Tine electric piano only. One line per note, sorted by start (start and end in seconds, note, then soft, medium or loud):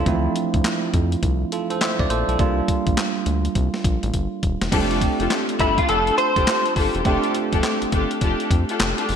0.00 0.24 D4 medium
0.00 0.23 F4 medium
0.05 0.14 E3 medium
0.05 2.35 A3 medium
0.05 2.36 C4 medium
0.05 1.50 E4 medium
0.12 2.38 F3 medium
1.52 1.70 F4 medium
1.52 1.70 A4 medium
1.70 1.81 A4 medium
1.70 1.80 C5 medium
1.81 1.99 C5 medium
1.81 1.99 E5 medium
2.00 2.10 D5 medium
2.10 2.27 A4 medium
2.10 2.28 C5 medium
2.29 2.39 F4 soft
2.29 2.56 A4 medium
2.38 4.68 G3 medium
2.38 4.68 A#3 medium
2.38 4.68 D4 medium
2.38 4.69 F4 medium
4.71 4.80 G3 medium
4.71 7.01 C4 medium
4.71 7.01 D4 medium
4.71 7.02 G4 medium
4.78 7.03 A3 medium
7.04 9.16 A3 medium
7.04 9.16 C4 medium
7.04 9.16 D4 medium
7.04 9.16 G4 medium